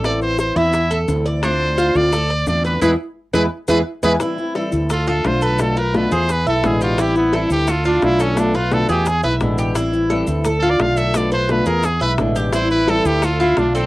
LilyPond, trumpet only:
\new Staff \with { instrumentName = "Trumpet" } { \time 4/4 \key a \minor \tempo 4 = 173 d''8 c''8 c''8 e''4 r4. | c''4. d''4. d''8 b'8 | b'8 r4 b'8 r8 b'8 r8 b'8 | r2 f'8 a'8 c''8 b'8 |
a'8 bes'8 b'8 c''8 b'8 a'8 gis'8 f'8 | g'8 b8 e'8 g'8 f'8 d'8 e'8 cis'8 | d'8 f'8 a'8 g'8 gis'8 b'8 r4 | r2 \tuplet 3/2 { r8 a'8 d''8 } f''8 e''8 |
d''8 c''8 b'8 bes'8 gis'8 b'8 r4 | c''8 b'8 a'8 g'8 f'8 e'8 d'8 c'8 | }